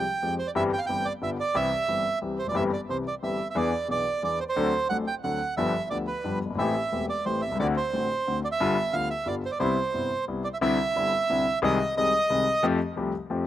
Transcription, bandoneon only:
Already playing: G5
0.39 C5
0.47 D5
0.56 E5
0.73 G5
0.78 F5
0.86 G5
1.05 D5
1.23 E5
1.40 D5
1.56 E5
2.39 C5
2.49 D5
2.56 E5
2.73 D5
2.90 C5
3.07 D5
3.23 E5
3.50 E5
3.57 D5
3.91 D5
4.24 D5
4.40 C5
4.49 C5
4.89 F#5
5.07 G5
5.23 F#5
5.57 E5
5.90 D5
6.07 B4
6.59 E5
7.10 D5
7.26 C5
7.42 E5
7.60 D5
7.77 C5
8.45 D5
8.52 E5
8.93 F5
9.10 E5
9.27 D5
9.46 C5
9.52 D5
9.59 C5
10.44 D5
10.54 E5
10.62 E5
11.64 D#5
11.97 D#5

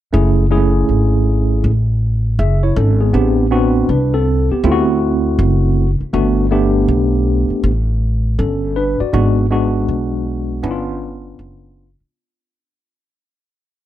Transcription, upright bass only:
0.14 F#1
0.89 G#1
1.64 A1
2.39 F#1
2.76 G#1
3.14 A1
3.89 C2
4.51 muted upright bass stroke
4.64 D2
5.39 F#1
6.00 muted upright bass stroke
6.14 G1
6.88 B1
7.50 muted upright bass stroke
7.64 A1
8.39 G1
9.00 muted upright bass stroke
9.13 G#1
9.88 B1
10.64 G1
11.39 F#1
12.00 muted upright bass stroke

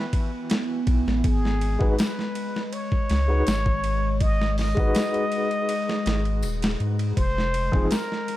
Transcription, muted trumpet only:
Already playing: B4
1.25 G#4
1.99 B4
2.73 C#5
4.22 D#5
4.60 D#5
7.18 C5
7.91 A#4

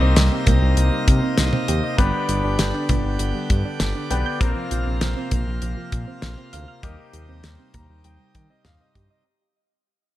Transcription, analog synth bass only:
0.01 C2
0.17 C2
0.47 C2
0.62 C2
0.77 C2
1.08 C3
1.38 C2
1.68 D#2
1.98 G1
2.29 G1
2.44 G1
2.59 G1
2.89 G1
3.05 G1
3.20 G1
3.50 G2
3.80 G1
4.11 B1
4.41 A#1
4.71 A#1
4.86 A#1
5.01 A#1
5.32 A#1
5.47 A#1
5.62 A#1
5.92 A#2
6.23 A#1
6.53 D2
6.83 D#2
7.13 D#2
7.29 D#2
7.44 D#2
7.74 D#2
7.89 D#2
8.05 D#2
8.35 D#3
8.65 D#2
8.95 G2

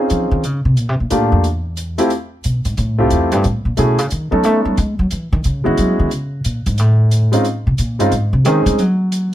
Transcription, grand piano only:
Already playing: C4 C#4 D#4
0.00 F4 G#4
1.10 A3 A#3 D4 F4 G4
1.98 A3 C4 E4 F4 G4
2.98 A3 C4 E4 F4 G4
3.77 A3 C#4 E4 F#4 G#4
4.31 A3 B3 C#4 D#4 A4
5.64 G#3 B3 C#4 E4 F#4
7.32 G#3 C4 C#4 D#4 F4
7.99 G#3 C4 C#4 D#4 F4
8.45 G#3 C4 C#4 D#4 G#4

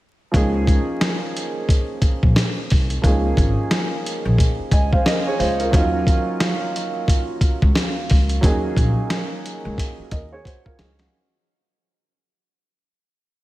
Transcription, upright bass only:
0.34 C#2
2.23 A#1
2.72 C2
3.04 C#2
3.37 G#1
4.25 A#1
4.59 muted upright bass stroke
4.72 C#2
5.40 C#2
5.73 D#2
7.62 C#2
8.11 C#2
8.43 D#2
8.77 A#1
9.65 C#2
9.99 muted upright bass stroke
10.12 D#2
10.79 C#2

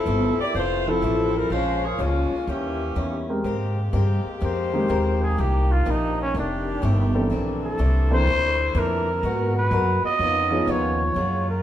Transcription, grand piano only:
0.87 F3 C4 E4 A4
3.29 G#3 C4 G4 A#4
4.73 D#3 G#3 A#3 C4 G4
7.14 E3 A#3 C4 D4 A4
8.11 E3 A#3 C4 D4 A4
10.51 F3 B3 C#4 D#4 G#4

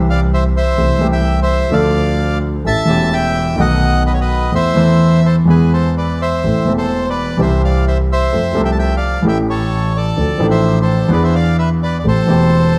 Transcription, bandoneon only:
0.10 D5 F5
0.34 C5 E5
0.57 C5 E5
1.12 E5 G5
1.42 C5 E5
1.73 D5 F5
2.67 E5 A5
3.13 E5 G5
3.60 D#5 F#5
4.07 B4 D#5
4.13 C#5
4.21 B4 D#5
4.55 C5 E5
5.26 A4 C5
5.50 G#4 B4
5.73 A4 C5
5.98 B4 D5
6.21 C5 E5
6.78 A4 C5
7.10 B4 D5
7.41 C5 E5
7.64 D5 F5
7.88 C5 E5
8.12 C5 E5
8.65 E5 G5
8.72 A5
8.79 E5 G5
8.96 D5 F5
9.28 E5 G5
9.50 A4 C#5
9.97 A4 D5
10.51 C5 E5
10.82 A4 C5
11.12 B4 D5
11.23 C5 E5
11.35 D5 F5
11.58 B4 E5
11.83 B4 D5
11.99 D5
12.08 A4 C5

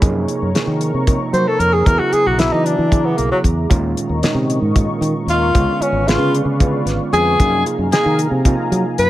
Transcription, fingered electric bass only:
0.02 F#2
0.42 F#2
0.67 D#3
0.94 C3
1.33 F#3
1.59 F2
1.86 E2
2.13 muted fingered electric bass stroke
2.26 B1
2.53 E3
2.79 E3
3.18 B1
3.31 muted fingered electric bass stroke
3.44 E2
3.71 D#2
4.09 D#2
4.34 C3
4.61 G#2
5.01 D#3
5.27 D#2
5.55 C#2
5.80 muted fingered electric bass stroke
5.92 G#1
6.18 C#3
6.45 C#3
6.85 G#1
6.98 muted fingered electric bass stroke
7.13 F2
7.40 F#2
7.78 F#2
8.06 D#3
8.31 C3
8.72 F#3
8.98 F#2

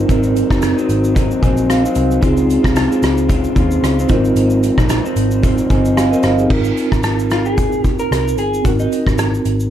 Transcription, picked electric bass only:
0.09 G#1
0.51 F#1
0.89 G#1
1.43 A#1
1.96 C2
2.23 C#2
2.64 C2
3.03 C#2
3.56 D#2
3.83 C#2
4.09 G#1
4.36 G#1
4.78 A#1
5.16 G#1
5.70 G1
6.24 G1
6.50 G#1
6.92 G#1
8.11 C2
8.39 G1
8.65 G#1
9.07 G#1
9.45 G#1

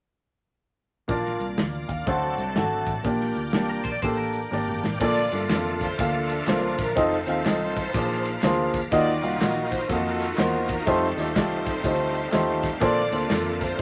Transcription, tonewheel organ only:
1.09 A#3 D4 F4
2.07 F#3 A3 C4 A4
3.04 A#3 D4 G4
5.00 D3 F3 A3 A#3 F4
6.98 D#3 C4
7.94 A#3 F5
8.91 D#3 D#4
10.86 G3 A3 C4
12.81 D3 A#3
13.79 D#3

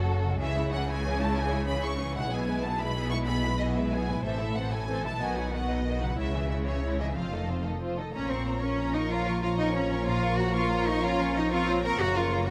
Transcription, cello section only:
Already playing: F#2
0.41 C#3
2.32 B2
4.26 A2
5.21 B2
6.17 C#3
7.17 F2
8.15 C#4
8.31 C4
8.63 C#4
8.95 D#4
9.11 F4
9.42 F4
9.59 D#4
9.75 C#4
10.06 F4
10.38 F#4
10.55 F4
10.88 D#4
11.04 F4
11.37 D#4
11.53 F4
11.84 A#4
12.00 F#4
12.16 F4

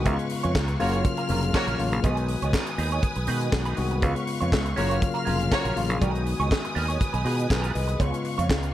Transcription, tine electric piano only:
0.05 C#3 G#3 B3 E4
0.12 F4
0.79 C#3 F#3 A#3 F4
1.28 C#3 F#3 A#3 E4
1.36 F4
1.78 C#3 F#3 A#3 F4
2.02 D#3 G#3 B3 F#4
3.27 D#3 G#3 B3 F#4
3.77 D#3 G#3 B3 F#4
4.01 C#3 G#3 B3 F4
4.77 C#3 F#3 A#3 F4
5.26 C#3 F#3 A#3 F4
5.75 C#3 F#3 A#3 F4
6.01 D#3 G#3 B3 F#4
7.26 F4 G#4
7.51 G#4 B4
7.75 B4 D#5
7.99 C#3 G#3 B3 F4

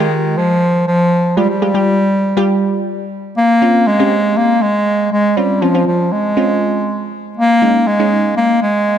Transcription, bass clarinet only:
Already playing: D#3
0.37 F3
0.87 F3
1.37 G3
1.50 G3
3.37 A#3
3.87 G#3
4.37 A#3
4.62 G#3
5.12 G#3
5.37 G3
5.62 F3
5.87 F3
6.12 G#3
7.37 A#3
7.87 G#3
8.37 A#3
8.62 G#3

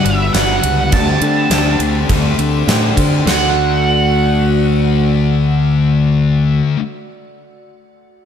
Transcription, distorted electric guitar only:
Already playing: G2
0.06 D3 G3
0.34 G2 D3 G3
0.64 D3 G3
0.92 D3 A3 D4
1.22 A3 D4
1.51 D3 A3 D4
1.80 A3 D4
2.08 D3 A3 D4
2.38 A3 D4
2.68 D3 A3 D4
2.97 A3 D4
3.25 D3 A3
3.30 D4

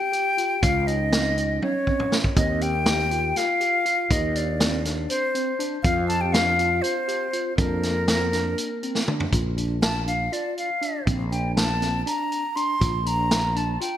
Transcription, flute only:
Already playing: G5
0.63 F5
0.87 D#5
1.62 C#5
2.37 D#5
2.62 G5
3.37 F5
4.12 D#5
4.37 D5
5.09 C5
5.83 F5
6.08 A5
6.21 G5
6.33 F5
6.82 C5
7.57 A#4
9.82 A5
10.07 F5
10.33 D5
10.58 F5
11.31 G5
11.55 A5
12.07 A#5
12.56 C6
13.07 A#5
13.57 A5
13.81 G5

